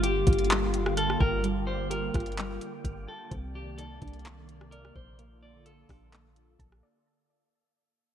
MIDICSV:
0, 0, Header, 1, 7, 480
1, 0, Start_track
1, 0, Key_signature, -2, "minor"
1, 0, Tempo, 468750
1, 1475, Time_signature, 4, 2, 24, 8
1, 8343, End_track
2, 0, Start_track
2, 0, Title_t, "Clean electric guitar"
2, 0, Program_c, 0, 27
2, 33, Note_on_c, 0, 67, 85
2, 953, Note_off_c, 0, 67, 0
2, 997, Note_on_c, 0, 69, 91
2, 1223, Note_off_c, 0, 69, 0
2, 1233, Note_on_c, 0, 70, 82
2, 1462, Note_off_c, 0, 70, 0
2, 1710, Note_on_c, 0, 72, 81
2, 1940, Note_off_c, 0, 72, 0
2, 1952, Note_on_c, 0, 70, 75
2, 3112, Note_off_c, 0, 70, 0
2, 3158, Note_on_c, 0, 69, 81
2, 3384, Note_off_c, 0, 69, 0
2, 3638, Note_on_c, 0, 67, 88
2, 3864, Note_off_c, 0, 67, 0
2, 3868, Note_on_c, 0, 69, 88
2, 4790, Note_off_c, 0, 69, 0
2, 4826, Note_on_c, 0, 70, 78
2, 5058, Note_off_c, 0, 70, 0
2, 5076, Note_on_c, 0, 72, 80
2, 5303, Note_off_c, 0, 72, 0
2, 5556, Note_on_c, 0, 74, 82
2, 5783, Note_off_c, 0, 74, 0
2, 5793, Note_on_c, 0, 69, 99
2, 6245, Note_off_c, 0, 69, 0
2, 8343, End_track
3, 0, Start_track
3, 0, Title_t, "Synth texture"
3, 0, Program_c, 1, 99
3, 0, Note_on_c, 1, 58, 82
3, 0, Note_on_c, 1, 67, 78
3, 0, Note_on_c, 1, 77, 91
3, 1455, Note_off_c, 1, 77, 0
3, 1476, Note_on_c, 1, 79, 90
3, 3356, Note_off_c, 1, 58, 0
3, 3356, Note_off_c, 1, 67, 0
3, 3376, Note_off_c, 1, 79, 0
3, 3396, Note_on_c, 1, 58, 85
3, 3396, Note_on_c, 1, 63, 76
3, 3396, Note_on_c, 1, 74, 91
3, 5296, Note_off_c, 1, 58, 0
3, 5296, Note_off_c, 1, 63, 0
3, 5313, Note_on_c, 1, 58, 84
3, 5313, Note_on_c, 1, 69, 77
3, 7197, Note_off_c, 1, 74, 0
3, 7214, Note_off_c, 1, 58, 0
3, 7215, Note_off_c, 1, 69, 0
3, 8343, End_track
4, 0, Start_track
4, 0, Title_t, "Synth pluck"
4, 0, Program_c, 2, 84
4, 0, Note_on_c, 2, 55, 88
4, 37, Note_on_c, 2, 67, 81
4, 273, Note_on_c, 2, 65, 86
4, 500, Note_off_c, 2, 55, 0
4, 512, Note_on_c, 2, 55, 79
4, 994, Note_on_c, 2, 89, 105
4, 1232, Note_on_c, 2, 79, 84
4, 1465, Note_off_c, 2, 55, 0
4, 1476, Note_off_c, 2, 67, 0
4, 1477, Note_on_c, 2, 55, 83
4, 1714, Note_off_c, 2, 65, 0
4, 1950, Note_on_c, 2, 67, 84
4, 2196, Note_on_c, 2, 65, 99
4, 2428, Note_off_c, 2, 55, 0
4, 2434, Note_off_c, 2, 89, 0
4, 2440, Note_on_c, 2, 55, 82
4, 2673, Note_off_c, 2, 79, 0
4, 2914, Note_on_c, 2, 89, 102
4, 3148, Note_on_c, 2, 79, 86
4, 3387, Note_on_c, 2, 60, 97
4, 3391, Note_off_c, 2, 79, 0
4, 3392, Note_off_c, 2, 67, 0
4, 3394, Note_off_c, 2, 89, 0
4, 3395, Note_off_c, 2, 65, 0
4, 3397, Note_off_c, 2, 55, 0
4, 3880, Note_on_c, 2, 63, 87
4, 4120, Note_on_c, 2, 62, 93
4, 4339, Note_off_c, 2, 60, 0
4, 4351, Note_on_c, 2, 60, 81
4, 4833, Note_on_c, 2, 74, 103
4, 5073, Note_on_c, 2, 72, 81
4, 5312, Note_on_c, 2, 58, 95
4, 5313, Note_off_c, 2, 60, 0
4, 5314, Note_off_c, 2, 72, 0
4, 5314, Note_off_c, 2, 74, 0
4, 5317, Note_off_c, 2, 62, 0
4, 5317, Note_off_c, 2, 63, 0
4, 5796, Note_on_c, 2, 69, 82
4, 6035, Note_on_c, 2, 62, 94
4, 6263, Note_off_c, 2, 58, 0
4, 6276, Note_on_c, 2, 58, 73
4, 6753, Note_on_c, 2, 81, 99
4, 6994, Note_on_c, 2, 74, 87
4, 7233, Note_off_c, 2, 81, 0
4, 7234, Note_off_c, 2, 62, 0
4, 7234, Note_off_c, 2, 74, 0
4, 7235, Note_off_c, 2, 58, 0
4, 7235, Note_off_c, 2, 69, 0
4, 8343, End_track
5, 0, Start_track
5, 0, Title_t, "Analog synth pad"
5, 0, Program_c, 3, 89
5, 0, Note_on_c, 3, 50, 81
5, 0, Note_on_c, 3, 55, 75
5, 0, Note_on_c, 3, 58, 69
5, 0, Note_on_c, 3, 65, 88
5, 3354, Note_off_c, 3, 50, 0
5, 3354, Note_off_c, 3, 58, 0
5, 3354, Note_off_c, 3, 65, 0
5, 3357, Note_off_c, 3, 55, 0
5, 3395, Note_on_c, 3, 74, 89
5, 3396, Note_on_c, 3, 48, 78
5, 3396, Note_on_c, 3, 51, 74
5, 3396, Note_on_c, 3, 58, 75
5, 5296, Note_off_c, 3, 48, 0
5, 5296, Note_off_c, 3, 51, 0
5, 5296, Note_off_c, 3, 74, 0
5, 5314, Note_on_c, 3, 50, 79
5, 5314, Note_on_c, 3, 65, 91
5, 5314, Note_on_c, 3, 69, 74
5, 7197, Note_off_c, 3, 58, 0
5, 7215, Note_off_c, 3, 50, 0
5, 7215, Note_off_c, 3, 65, 0
5, 7215, Note_off_c, 3, 69, 0
5, 8343, End_track
6, 0, Start_track
6, 0, Title_t, "808-style bass"
6, 0, Program_c, 4, 38
6, 0, Note_on_c, 4, 31, 113
6, 246, Note_off_c, 4, 31, 0
6, 276, Note_on_c, 4, 31, 104
6, 1197, Note_off_c, 4, 31, 0
6, 1235, Note_on_c, 4, 31, 109
6, 2156, Note_off_c, 4, 31, 0
6, 2196, Note_on_c, 4, 31, 98
6, 2656, Note_off_c, 4, 31, 0
6, 2913, Note_on_c, 4, 31, 107
6, 3144, Note_off_c, 4, 31, 0
6, 3394, Note_on_c, 4, 36, 110
6, 4085, Note_off_c, 4, 36, 0
6, 4115, Note_on_c, 4, 36, 106
6, 5036, Note_off_c, 4, 36, 0
6, 5075, Note_on_c, 4, 34, 110
6, 5996, Note_off_c, 4, 34, 0
6, 6035, Note_on_c, 4, 34, 104
6, 6726, Note_off_c, 4, 34, 0
6, 6752, Note_on_c, 4, 34, 101
6, 6984, Note_off_c, 4, 34, 0
6, 8343, End_track
7, 0, Start_track
7, 0, Title_t, "Drums"
7, 36, Note_on_c, 9, 42, 85
7, 139, Note_off_c, 9, 42, 0
7, 274, Note_on_c, 9, 42, 60
7, 276, Note_on_c, 9, 36, 98
7, 335, Note_off_c, 9, 42, 0
7, 335, Note_on_c, 9, 42, 49
7, 378, Note_off_c, 9, 36, 0
7, 395, Note_off_c, 9, 42, 0
7, 395, Note_on_c, 9, 42, 44
7, 455, Note_off_c, 9, 42, 0
7, 455, Note_on_c, 9, 42, 34
7, 512, Note_off_c, 9, 42, 0
7, 512, Note_on_c, 9, 42, 76
7, 524, Note_on_c, 9, 39, 125
7, 615, Note_off_c, 9, 42, 0
7, 626, Note_off_c, 9, 39, 0
7, 756, Note_on_c, 9, 42, 68
7, 858, Note_off_c, 9, 42, 0
7, 882, Note_on_c, 9, 37, 97
7, 985, Note_off_c, 9, 37, 0
7, 995, Note_on_c, 9, 42, 77
7, 1098, Note_off_c, 9, 42, 0
7, 1125, Note_on_c, 9, 37, 84
7, 1227, Note_off_c, 9, 37, 0
7, 1235, Note_on_c, 9, 36, 85
7, 1337, Note_off_c, 9, 36, 0
7, 1474, Note_on_c, 9, 42, 70
7, 1576, Note_off_c, 9, 42, 0
7, 1956, Note_on_c, 9, 42, 85
7, 2058, Note_off_c, 9, 42, 0
7, 2195, Note_on_c, 9, 42, 58
7, 2196, Note_on_c, 9, 36, 97
7, 2205, Note_on_c, 9, 37, 91
7, 2255, Note_off_c, 9, 42, 0
7, 2255, Note_on_c, 9, 42, 48
7, 2298, Note_off_c, 9, 36, 0
7, 2308, Note_off_c, 9, 37, 0
7, 2315, Note_off_c, 9, 42, 0
7, 2315, Note_on_c, 9, 42, 42
7, 2375, Note_off_c, 9, 42, 0
7, 2375, Note_on_c, 9, 42, 34
7, 2431, Note_off_c, 9, 42, 0
7, 2431, Note_on_c, 9, 42, 75
7, 2443, Note_on_c, 9, 39, 122
7, 2534, Note_off_c, 9, 42, 0
7, 2545, Note_off_c, 9, 39, 0
7, 2676, Note_on_c, 9, 42, 68
7, 2778, Note_off_c, 9, 42, 0
7, 2913, Note_on_c, 9, 36, 95
7, 2916, Note_on_c, 9, 42, 79
7, 3015, Note_off_c, 9, 36, 0
7, 3019, Note_off_c, 9, 42, 0
7, 3394, Note_on_c, 9, 36, 117
7, 3394, Note_on_c, 9, 42, 65
7, 3497, Note_off_c, 9, 36, 0
7, 3497, Note_off_c, 9, 42, 0
7, 3876, Note_on_c, 9, 42, 85
7, 3978, Note_off_c, 9, 42, 0
7, 4114, Note_on_c, 9, 42, 55
7, 4115, Note_on_c, 9, 36, 102
7, 4174, Note_off_c, 9, 42, 0
7, 4174, Note_on_c, 9, 42, 49
7, 4218, Note_off_c, 9, 36, 0
7, 4234, Note_off_c, 9, 42, 0
7, 4234, Note_on_c, 9, 42, 45
7, 4294, Note_off_c, 9, 42, 0
7, 4294, Note_on_c, 9, 42, 35
7, 4352, Note_off_c, 9, 42, 0
7, 4352, Note_on_c, 9, 42, 75
7, 4363, Note_on_c, 9, 39, 124
7, 4454, Note_off_c, 9, 42, 0
7, 4465, Note_off_c, 9, 39, 0
7, 4596, Note_on_c, 9, 42, 68
7, 4698, Note_off_c, 9, 42, 0
7, 4722, Note_on_c, 9, 37, 96
7, 4824, Note_off_c, 9, 37, 0
7, 4836, Note_on_c, 9, 42, 80
7, 4939, Note_off_c, 9, 42, 0
7, 4964, Note_on_c, 9, 37, 85
7, 5066, Note_off_c, 9, 37, 0
7, 5074, Note_on_c, 9, 36, 84
7, 5177, Note_off_c, 9, 36, 0
7, 5314, Note_on_c, 9, 42, 70
7, 5416, Note_off_c, 9, 42, 0
7, 5795, Note_on_c, 9, 42, 83
7, 5897, Note_off_c, 9, 42, 0
7, 6032, Note_on_c, 9, 46, 43
7, 6035, Note_on_c, 9, 36, 95
7, 6044, Note_on_c, 9, 37, 96
7, 6135, Note_off_c, 9, 46, 0
7, 6137, Note_off_c, 9, 36, 0
7, 6147, Note_off_c, 9, 37, 0
7, 6271, Note_on_c, 9, 42, 73
7, 6282, Note_on_c, 9, 39, 122
7, 6373, Note_off_c, 9, 42, 0
7, 6385, Note_off_c, 9, 39, 0
7, 6515, Note_on_c, 9, 42, 69
7, 6618, Note_off_c, 9, 42, 0
7, 6752, Note_on_c, 9, 36, 96
7, 6756, Note_on_c, 9, 42, 75
7, 6855, Note_off_c, 9, 36, 0
7, 6859, Note_off_c, 9, 42, 0
7, 6884, Note_on_c, 9, 37, 89
7, 6986, Note_off_c, 9, 37, 0
7, 8343, End_track
0, 0, End_of_file